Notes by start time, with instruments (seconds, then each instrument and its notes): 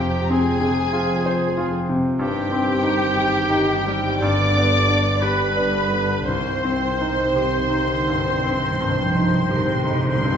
Already playing: double bass section F1, grand piano F2 C4 F4 C5, cello section F2, french horn section F3 C4, viola section G4, oboe G4, violin section G4 G5
0.00 grand piano C3
0.23 violin section A#5
0.30 french horn section F3 C4, grand piano C4, viola section G#4, oboe G#4, violin section G#4 G#5
0.61 grand piano C3
0.93 grand piano F4
1.26 grand piano C5
1.57 grand piano F4
1.89 grand piano C3
2.19 double bass section G1, grand piano G2, cello section G2, french horn section D#3 C4, viola section G4, oboe G4, violin section G4 G5
2.52 grand piano C4
2.83 grand piano D#4
3.17 grand piano G4
3.50 grand piano D#4
3.87 grand piano G3
4.22 grand piano G2, french horn section D3 B3, viola section D5, violin section D5 D6, oboe D5
4.57 grand piano B3
4.88 grand piano D4
5.22 french horn section D3 B3, grand piano G4, oboe B4, viola section B4, violin section B4 B5
5.57 grand piano D4
5.92 grand piano D3
6.26 double bass section C2, grand piano C2, cello section C3, french horn section D#3 C4, oboe C5, viola section C5, violin section C5 C6
6.44 timpani C3
6.61 timpani C3
6.65 grand piano C4
6.69 timpani C3
6.86 timpani C3
6.94 timpani C3
7.01 timpani C3, grand piano D#4
7.11 timpani C3
7.27 timpani C3
7.35 timpani C3, cello section C3, grand piano G4
7.58 timpani C3
7.70 grand piano D#4
7.75 timpani C3
7.83 timpani C3
7.90 timpani C3, cello section D3
7.99 timpani C3
8.07 grand piano G2, timpani C3
8.24 timpani C3
8.32 timpani C3
8.39 timpani C3
8.44 timpani C3, cello section D#3, grand piano C4
8.55 timpani C3
8.64 timpani C3
8.72 timpani C3
8.80 grand piano G2, timpani C3
8.89 timpani C3
8.97 timpani C3, cello section F3
9.04 timpani C3
9.12 timpani C3, grand piano D#4
9.20 timpani C3
9.28 timpani C3
9.36 timpani C3
9.44 timpani C3
9.51 timpani C3, cello section D#3, grand piano G4
9.60 timpani C3
9.69 timpani C3
9.76 timpani C3
9.84 timpani C3, grand piano D#4
9.92 timpani C3
10.00 timpani C3
10.06 timpani C3, cello section D3, french horn section C4, oboe C5, violin section C6
10.16 timpani C3
10.24 grand piano G2, timpani C3
10.32 timpani C3